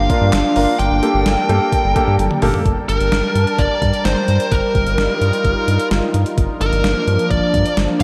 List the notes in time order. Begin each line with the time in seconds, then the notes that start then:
Already playing: A#3 D4 F4 F5
0.10 D4 F4 A#4, kick, closed hi-hat
0.21 G2
0.33 G1 F5, snare, clap, closed hi-hat
0.56 G1 D4 F4 A#4, open hi-hat
0.79 G1 G3 A4 A#4 G5, closed hi-hat
0.91 G1
1.03 A#3 G4 A4, closed hi-hat
1.14 G1
1.26 G1, snare, closed hi-hat
1.49 G2 A#3 G4 A4, closed hi-hat
1.72 kick, closed hi-hat
1.84 G1
1.96 A#3 G4 A4, kick, closed hi-hat
2.07 G2
2.19 G1, closed hi-hat, high tom
2.31 mid tom
2.42 G1 A#3 G4 A4, mid tom, open hi-hat
2.54 floor tom
2.66 G1 G3 D4 A#4 A5, kick, closed hi-hat
2.89 G1 A#4, closed hi-hat
3.01 G1, closed hi-hat
3.12 G1, snare, closed hi-hat
3.35 G2, closed hi-hat
3.47 closed hi-hat
3.58 G1 D5, kick, closed hi-hat
3.82 G2, kick, closed hi-hat
3.94 closed hi-hat
4.05 G1 C5, snare, closed hi-hat
4.28 G2, closed hi-hat
4.40 closed hi-hat
4.51 G1 D#4 F4 A#4, kick, closed hi-hat
4.75 G1, kick, closed hi-hat
4.86 G1, closed hi-hat
4.98 G1, snare, closed hi-hat
5.21 G2, closed hi-hat
5.33 closed hi-hat
5.45 G1, kick, closed hi-hat
5.68 G2, closed hi-hat
5.80 closed hi-hat
5.91 G1, snare, closed hi-hat
6.14 G2, closed hi-hat
6.26 closed hi-hat
6.38 G1 F3 A#3 D4, kick, closed hi-hat
6.61 G1 A#4, closed hi-hat
6.73 G1, closed hi-hat
6.84 G1, snare, closed hi-hat
7.07 G2, closed hi-hat
7.19 closed hi-hat
7.31 G1 D5, kick, closed hi-hat
7.54 G2, kick, closed hi-hat
7.66 closed hi-hat
7.77 G1, snare, closed hi-hat
8.00 closed hi-hat